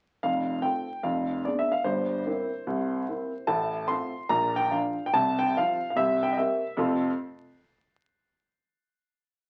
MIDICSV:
0, 0, Header, 1, 2, 480
1, 0, Start_track
1, 0, Key_signature, -1, "major"
1, 0, Tempo, 410116
1, 255, Time_signature, 4, 2, 24, 8
1, 11109, End_track
2, 0, Start_track
2, 0, Title_t, "Upright piano"
2, 0, Program_c, 0, 0
2, 269, Note_on_c, 0, 29, 53
2, 270, Note_on_c, 0, 77, 76
2, 271, Note_on_c, 0, 41, 58
2, 449, Control_c, 0, 64, 127
2, 670, Note_off_c, 0, 29, 0
2, 671, Note_off_c, 0, 41, 0
2, 728, Note_on_c, 0, 79, 73
2, 729, Note_on_c, 0, 60, 33
2, 740, Note_on_c, 0, 65, 31
2, 742, Note_off_c, 0, 77, 0
2, 745, Note_on_c, 0, 69, 36
2, 751, Control_c, 0, 64, 0
2, 994, Note_off_c, 0, 60, 0
2, 1002, Note_off_c, 0, 65, 0
2, 1006, Note_off_c, 0, 69, 0
2, 1208, Note_on_c, 0, 41, 62
2, 1210, Note_off_c, 0, 79, 0
2, 1210, Note_on_c, 0, 77, 71
2, 1215, Note_on_c, 0, 29, 51
2, 1448, Control_c, 0, 64, 127
2, 1618, Note_off_c, 0, 41, 0
2, 1622, Note_off_c, 0, 29, 0
2, 1691, Note_off_c, 0, 77, 0
2, 1695, Note_on_c, 0, 74, 58
2, 1698, Note_on_c, 0, 59, 30
2, 1706, Note_on_c, 0, 62, 28
2, 1708, Control_c, 0, 64, 0
2, 1710, Note_on_c, 0, 68, 34
2, 1854, Note_off_c, 0, 74, 0
2, 1857, Note_on_c, 0, 76, 69
2, 1961, Note_off_c, 0, 59, 0
2, 1967, Note_off_c, 0, 62, 0
2, 1970, Note_off_c, 0, 68, 0
2, 2009, Note_on_c, 0, 77, 73
2, 2015, Note_off_c, 0, 76, 0
2, 2157, Note_on_c, 0, 43, 57
2, 2158, Note_on_c, 0, 72, 70
2, 2168, Note_on_c, 0, 31, 55
2, 2171, Note_off_c, 0, 77, 0
2, 2372, Control_c, 0, 64, 127
2, 2572, Note_off_c, 0, 43, 0
2, 2579, Note_off_c, 0, 31, 0
2, 2643, Note_on_c, 0, 58, 41
2, 2653, Note_on_c, 0, 60, 36
2, 2656, Note_on_c, 0, 64, 43
2, 2666, Control_c, 0, 64, 0
2, 2910, Note_off_c, 0, 58, 0
2, 2917, Note_off_c, 0, 60, 0
2, 2919, Note_off_c, 0, 64, 0
2, 3123, Note_on_c, 0, 36, 60
2, 3124, Note_on_c, 0, 48, 52
2, 3536, Note_off_c, 0, 36, 0
2, 3537, Note_off_c, 0, 48, 0
2, 3599, Note_on_c, 0, 58, 32
2, 3609, Note_on_c, 0, 60, 35
2, 3609, Note_on_c, 0, 64, 38
2, 3868, Note_off_c, 0, 58, 0
2, 3875, Note_off_c, 0, 60, 0
2, 3875, Note_off_c, 0, 64, 0
2, 4063, Note_on_c, 0, 33, 60
2, 4064, Note_on_c, 0, 81, 85
2, 4065, Note_on_c, 0, 45, 67
2, 4088, Note_off_c, 0, 72, 0
2, 4338, Control_c, 0, 64, 127
2, 4486, Note_off_c, 0, 33, 0
2, 4487, Note_off_c, 0, 45, 0
2, 4538, Note_on_c, 0, 84, 84
2, 4540, Note_on_c, 0, 57, 41
2, 4545, Note_on_c, 0, 60, 38
2, 4553, Note_on_c, 0, 65, 37
2, 4561, Note_off_c, 0, 81, 0
2, 4586, Control_c, 0, 64, 0
2, 4814, Note_off_c, 0, 57, 0
2, 4818, Note_off_c, 0, 60, 0
2, 4824, Note_off_c, 0, 65, 0
2, 5026, Note_on_c, 0, 82, 92
2, 5028, Note_on_c, 0, 46, 67
2, 5029, Note_on_c, 0, 34, 61
2, 5039, Note_off_c, 0, 84, 0
2, 5286, Control_c, 0, 64, 127
2, 5339, Note_off_c, 0, 82, 0
2, 5339, Note_on_c, 0, 79, 94
2, 5450, Note_off_c, 0, 34, 0
2, 5450, Note_off_c, 0, 46, 0
2, 5513, Note_on_c, 0, 53, 37
2, 5513, Note_on_c, 0, 77, 63
2, 5524, Note_on_c, 0, 62, 36
2, 5527, Note_on_c, 0, 65, 33
2, 5531, Note_off_c, 0, 79, 0
2, 5557, Control_c, 0, 64, 0
2, 5785, Note_off_c, 0, 53, 0
2, 5792, Note_off_c, 0, 62, 0
2, 5795, Note_off_c, 0, 65, 0
2, 5915, Note_off_c, 0, 77, 0
2, 5925, Note_on_c, 0, 79, 79
2, 6008, Note_on_c, 0, 48, 74
2, 6012, Note_on_c, 0, 81, 106
2, 6019, Note_off_c, 0, 79, 0
2, 6021, Note_on_c, 0, 36, 66
2, 6241, Control_c, 0, 64, 127
2, 6305, Note_on_c, 0, 79, 96
2, 6313, Note_off_c, 0, 81, 0
2, 6422, Note_off_c, 0, 48, 0
2, 6429, Note_off_c, 0, 36, 0
2, 6495, Note_off_c, 0, 79, 0
2, 6511, Control_c, 0, 64, 0
2, 6518, Note_on_c, 0, 53, 42
2, 6522, Note_on_c, 0, 77, 88
2, 6529, Note_on_c, 0, 60, 43
2, 6535, Note_on_c, 0, 65, 56
2, 6778, Note_off_c, 0, 53, 0
2, 6786, Note_off_c, 0, 60, 0
2, 6790, Note_off_c, 0, 65, 0
2, 6892, Note_off_c, 0, 77, 0
2, 6910, Note_on_c, 0, 77, 68
2, 6972, Note_on_c, 0, 48, 71
2, 6982, Note_on_c, 0, 36, 62
2, 6982, Note_on_c, 0, 76, 94
2, 6992, Note_off_c, 0, 77, 0
2, 7198, Control_c, 0, 64, 127
2, 7279, Note_off_c, 0, 76, 0
2, 7290, Note_on_c, 0, 79, 78
2, 7385, Note_off_c, 0, 48, 0
2, 7391, Note_off_c, 0, 36, 0
2, 7405, Note_off_c, 0, 79, 0
2, 7405, Note_on_c, 0, 75, 59
2, 7464, Note_on_c, 0, 76, 69
2, 7465, Note_off_c, 0, 75, 0
2, 7468, Note_on_c, 0, 58, 32
2, 7478, Note_on_c, 0, 60, 33
2, 7479, Control_c, 0, 64, 0
2, 7485, Note_on_c, 0, 67, 39
2, 7731, Note_off_c, 0, 58, 0
2, 7738, Note_off_c, 0, 60, 0
2, 7743, Note_off_c, 0, 67, 0
2, 7922, Note_on_c, 0, 41, 79
2, 7929, Note_on_c, 0, 48, 64
2, 7931, Note_on_c, 0, 60, 61
2, 7934, Note_on_c, 0, 57, 69
2, 7940, Note_on_c, 0, 65, 66
2, 7942, Note_on_c, 0, 69, 72
2, 7943, Note_off_c, 0, 76, 0
2, 7945, Note_on_c, 0, 77, 57
2, 8113, Control_c, 0, 64, 127
2, 8242, Note_off_c, 0, 41, 0
2, 8245, Note_off_c, 0, 48, 0
2, 8247, Note_off_c, 0, 60, 0
2, 8248, Note_off_c, 0, 57, 0
2, 8252, Note_off_c, 0, 65, 0
2, 8252, Note_off_c, 0, 69, 0
2, 8254, Note_off_c, 0, 77, 0
2, 8301, Control_c, 0, 64, 0
2, 11109, End_track
0, 0, End_of_file